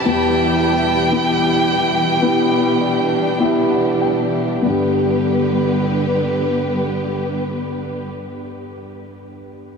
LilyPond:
<<
  \new Staff \with { instrumentName = "Violin" } { \time 4/4 \key g \major \tempo 4 = 47 g''2. r4 | r1 | }
  \new Staff \with { instrumentName = "Grand piano" } { \time 4/4 \key g \major << { r2 r8 d''8 e''16 fis''16 g''8 | r1 | } \\ { <b e' g'>4 <b e' g'>4 <b e' g'>4 <b e' g'>4 | <b d' g'>1 | } >> }
  \new Staff \with { instrumentName = "Grand piano" } { \clef bass \time 4/4 \key g \major <e, e>1 | g,1 | }
  \new Staff \with { instrumentName = "String section" } { \time 4/4 \key g \major << { <b, e g g'>1 | <d g b g' b'>1 | } \\ { e'2 d'2 | r1 | } >> }
>>